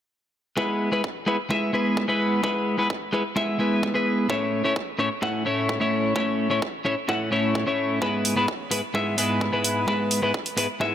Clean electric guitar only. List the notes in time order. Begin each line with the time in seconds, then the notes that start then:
0.57 G#3 B3 E4 B4
0.92 G#3 B3 E4 B4
1.26 G#3 B3 E4 B4
1.50 G#3 B3 E4 E5
1.73 G#3 B3 E4 B4
2.08 G#3 B3 E4 B4
2.43 G#3 B3 E4 B4
2.78 G#3 B3 E4 B4
3.13 G#3 B3 E4 B4
3.36 G#3 B3 E4 E5
3.59 G#3 B3 E4 B4
3.94 G#3 B3 E4 B4
4.29 A2 A3 C#4 E4 C#5
4.64 A2 A3 C#4 E4 C#5
4.99 A2 A3 C#4 E4 C#5
5.22 A2 A3 C#4 E4 F#5
5.45 A2 A3 C#4 E4 C#5
5.80 A2 A3 C#4 E4 C#5
6.15 A2 A3 C#4 E4 C#5
6.50 A2 A3 C#4 E4 C#5
6.85 A2 A3 C#4 E4 C#5
7.08 A2 A3 C#4 E4 F#5
7.31 A2 A3 C#4 E4 C#5
7.66 A2 A3 C#4 E4 C#5
8.01 G#2 G#3 B3 E4 B4
8.36 G#2 G#3 B3 E4 B4
8.71 G#2 G#3 B3 E4 B4
8.94 G#2 G#3 B3 E4 E5
9.17 G#2 G#3 B3 E4 B4
9.52 G#2 G#3 B3 E4 B4
9.87 G#2 G#3 B3 E4 B4
10.22 G#2 G#3 B3 E4 B4
10.57 G#2 G#3 B3 E4 B4
10.80 G#2 G#3 B3 E4 E5